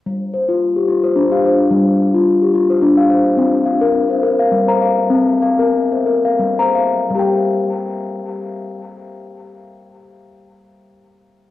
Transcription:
0.06 0.34 G3 medium
0.34 0.76 C5 soft
0.49 0.76 F4 medium
0.76 1.16 G4 soft
0.88 1.16 F4 medium
1.04 1.43 C5 medium
1.16 1.63 D4 medium
1.32 1.72 G4 soft
1.32 1.59 F5 medium
1.44 1.87 C5 medium
1.71 2.65 G3 medium
2.14 2.42 F4 medium
2.42 2.83 G4 soft
2.54 2.82 F4 medium
2.70 3.09 C5 medium
2.82 3.29 D4 medium
2.97 3.38 G4 soft
2.97 3.25 F5 medium
3.10 3.53 C5 soft
3.37 4.34 C4 medium
3.66 4.09 F5 medium
3.81 4.10 A#4 medium
4.10 4.52 C5 medium
4.23 4.51 A#4 medium
4.39 4.80 F5 medium
4.52 5.02 G3 medium
4.68 5.11 C5 soft
4.68 4.98 A#5 medium
4.81 5.28 F5 medium
5.10 6.20 C4 medium
5.42 5.91 F5 medium
5.59 5.91 A#4 medium
5.92 6.40 C5 soft
6.06 6.39 A#4 medium
6.25 6.74 F5 medium
6.39 7.00 G3 medium
6.59 7.11 C5 soft
6.59 6.94 A#5 medium
6.75 7.31 F5 medium
7.10 11.06 G3 medium
7.15 11.15 G4 medium
7.15 11.19 G5 medium

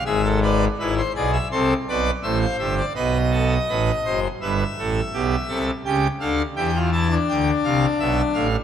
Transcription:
0.05 0.68 G#1 medium
0.05 0.68 G#2 medium
0.05 0.21 G#4 medium
0.05 0.28 E5 medium
0.24 0.40 A4 medium
0.42 0.65 B4 medium
0.42 0.65 D5 medium
0.79 1.01 G#1 medium
0.79 1.01 G#2 medium
0.79 1.01 E4 medium
0.79 0.94 B4 medium
0.97 1.12 C5 medium
1.15 1.38 B1 medium
1.15 1.37 B2 medium
1.15 1.37 G#4 medium
1.15 1.31 D5 medium
1.32 1.48 E5 medium
1.51 1.73 C2 medium
1.51 1.74 C3 medium
1.51 1.74 A4 medium
1.51 1.74 C5 medium
1.88 2.10 B1 medium
1.88 2.10 B2 medium
1.88 2.11 B4 medium
1.88 2.10 D5 medium
2.23 2.45 A1 medium
2.23 2.46 A2 medium
2.23 2.85 C5 medium
2.23 2.38 E5 medium
2.41 2.56 F5 medium
2.59 2.81 G1 medium
2.59 2.81 G2 medium
2.59 2.75 E5 medium
2.77 2.93 D5 medium
2.95 3.58 B1 medium
2.95 3.58 B2 soft
2.95 3.18 B4 medium
2.95 4.20 D#5 medium
3.31 3.54 A4 medium
3.68 3.91 A1 medium
3.68 3.91 A2 medium
3.68 3.91 B4 medium
4.05 4.27 F#1 medium
4.05 4.27 F#2 soft
4.05 4.27 C5 medium
4.41 4.63 G1 medium
4.41 4.63 G2 medium
4.41 4.64 B4 medium
4.41 5.65 E5 medium
4.79 5.01 A1 soft
4.79 5.00 A2 medium
4.79 5.00 A4 medium
5.13 5.36 B1 medium
5.13 5.35 B2 medium
5.13 5.36 G4 medium
5.48 5.71 C2 medium
5.48 5.71 C3 medium
5.48 5.71 A4 medium
5.85 6.07 C#2 medium
5.85 6.07 C#3 medium
5.85 6.07 G4 medium
5.85 6.07 G5 medium
6.20 6.42 D2 medium
6.20 6.42 D3 medium
6.20 6.42 A4 medium
6.20 6.42 F5 medium
6.56 7.18 E2 medium
6.56 7.17 E3 medium
6.56 6.71 G4 medium
6.56 6.78 G5 medium
6.75 6.90 F4 medium
6.92 7.08 E4 medium
6.92 7.14 A5 medium
7.10 8.47 D4 medium
7.29 7.51 D2 medium
7.29 7.51 D3 medium
7.29 7.51 G5 medium
7.64 7.86 C2 medium
7.64 7.86 C3 medium
7.64 7.86 F5 medium
8.00 8.21 B1 medium
8.00 8.21 B2 medium
8.00 8.21 E5 medium
8.34 8.57 A1 medium
8.34 8.56 A2 medium
8.34 8.56 F5 medium

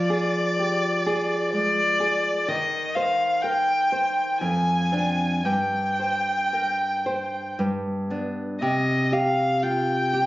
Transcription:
0.00 2.45 F3 medium
0.00 1.52 D5 medium
0.10 0.87 G#4 soft
0.59 1.07 G4 soft
1.06 1.82 G#4 medium
1.52 2.29 G#3 medium
1.52 2.50 D5 medium
2.00 2.48 G#4 medium
2.48 4.38 D#3 medium
2.48 2.97 D#5 medium
2.96 3.73 C5 soft
2.96 3.43 F5 medium
3.42 3.92 A#4 soft
3.42 4.40 G5 medium
3.92 4.42 C5 soft
4.40 5.42 F2 medium
4.40 5.47 G#5 medium
4.92 5.41 C4 soft
4.92 5.41 D4 soft
5.45 7.54 G2 soft
5.45 7.58 G5 medium
6.00 6.85 C5 soft
6.53 7.06 A#4 soft
7.06 7.58 C5 soft
7.59 8.59 G2 soft
8.10 8.58 B3 soft
8.10 8.58 D4 soft
8.62 10.26 C3 medium
8.62 9.14 D#5 medium
9.12 9.93 G4 soft
9.12 9.64 F5 medium
9.63 10.13 F4 soft
9.63 10.26 G5 medium
10.13 10.26 G4 soft

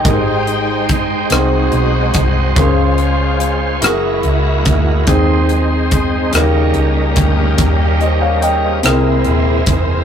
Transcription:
0.00 2.53 D#4 medium
0.00 1.30 D#4 medium
0.00 0.11 A#4 medium
0.00 0.25 D#5 soft
0.00 0.25 G5 medium
0.00 1.30 G5 medium
0.04 1.27 G#1 medium
0.04 1.27 G#2 medium
0.04 1.31 G#3 medium
0.04 3.79 G#3 medium
0.04 1.30 D#4 medium
0.04 1.31 G4 medium
0.04 1.31 G#4 medium
0.04 0.12 A#4 soft
0.04 3.79 C5 medium
0.04 1.29 G5 medium
0.04 kick medium
0.04 closed hi-hat medium
0.10 1.31 C5 medium
0.10 1.32 C5 medium
0.47 closed hi-hat soft
0.89 kick medium
0.89 closed hi-hat soft
1.30 1.69 C2 medium
1.30 2.54 G#3 medium
1.30 2.53 C4 medium
1.30 2.57 D#4 medium
1.30 2.57 F#4 soft
1.30 2.56 F#4 medium
1.30 2.58 F#4 medium
1.30 2.55 G#4 soft
1.30 2.54 C5 medium
1.30 2.58 C5 medium
1.30 cross-stick loud
1.30 closed hi-hat medium
1.72 2.11 B1 medium
1.72 closed hi-hat soft
2.14 2.53 C2 medium
2.14 kick medium
2.14 closed hi-hat medium
2.55 3.78 C#2 medium
2.55 3.78 C#3 medium
2.55 3.81 G#3 medium
2.55 3.82 C#4 medium
2.55 3.81 C#4 medium
2.55 3.81 F4 medium
2.55 3.82 F4 medium
2.55 3.81 G#4 medium
2.55 2.64 A#4 medium
2.55 3.82 C5 medium
2.55 kick medium
2.55 closed hi-hat medium
2.64 3.86 C5 medium
2.98 closed hi-hat soft
3.40 closed hi-hat medium
3.81 4.21 F#1 medium
3.81 5.05 G#3 medium
3.81 5.06 G#3 medium
3.81 5.06 A#3 medium
3.81 5.07 E4 medium
3.81 5.06 E4 medium
3.81 5.08 E4 medium
3.81 5.06 F#4 medium
3.81 5.07 F#4 medium
3.81 5.08 F#4 medium
3.81 5.07 G#4 medium
3.81 5.08 A#4 medium
3.81 cross-stick loud
3.81 closed hi-hat medium
4.23 4.62 C#2 medium
4.23 closed hi-hat soft
4.65 5.04 D2 medium
4.65 kick medium
4.65 closed hi-hat medium
5.06 6.29 D#2 medium
5.06 6.30 D#3 medium
5.06 6.31 G#3 medium
5.06 6.33 G#3 medium
5.06 6.31 C4 medium
5.06 6.33 C4 medium
5.06 8.80 D#4 medium
5.06 6.31 D#4 medium
5.06 6.32 D#4 medium
5.06 6.31 G#4 medium
5.06 6.34 G#4 medium
5.06 6.33 C5 medium
5.06 6.34 C5 medium
5.06 kick medium
5.06 closed hi-hat medium
5.49 closed hi-hat soft
5.91 kick medium
5.91 closed hi-hat medium
6.31 6.72 D#2 medium
6.31 7.55 C#3 medium
6.31 8.80 G3 medium
6.31 8.81 A#3 medium
6.31 8.79 C#4 medium
6.31 8.81 C#4 medium
6.31 8.80 C#4 medium
6.31 8.80 D#4 medium
6.31 6.40 F#4 soft
6.31 8.81 G4 medium
6.31 8.80 A#4 medium
6.31 cross-stick loud
6.31 closed hi-hat medium
6.36 8.81 A#4 medium
6.41 8.84 G4 medium
6.74 7.13 C#2 medium
6.74 closed hi-hat soft
7.16 7.55 D2 medium
7.16 kick medium
7.16 closed hi-hat medium
7.58 8.80 D#2 medium
7.58 kick medium
7.58 closed hi-hat medium
8.01 8.21 C5 soft
8.01 8.21 D#5 medium
8.01 closed hi-hat soft
8.22 8.42 C#5 soft
8.22 8.41 F5 medium
8.41 8.62 D#5 medium
8.41 8.62 G5 medium
8.41 closed hi-hat medium
8.63 9.04 C5 soft
8.63 9.03 D#5 medium
8.83 9.23 C2 medium
8.83 10.04 C3 medium
8.83 10.04 G#3 medium
8.83 10.04 A#3 medium
8.83 10.04 C4 medium
8.83 8.90 D#4 soft
8.83 10.04 E4 soft
8.83 10.04 E4 medium
8.83 10.04 G#4 medium
8.83 10.04 A#4 medium
8.83 10.04 C5 medium
8.83 cross-stick loud
8.83 closed hi-hat medium
8.90 10.04 E4 medium
9.24 9.64 D#1 medium
9.24 closed hi-hat soft
9.66 10.04 E1 medium
9.66 kick medium
9.66 closed hi-hat medium

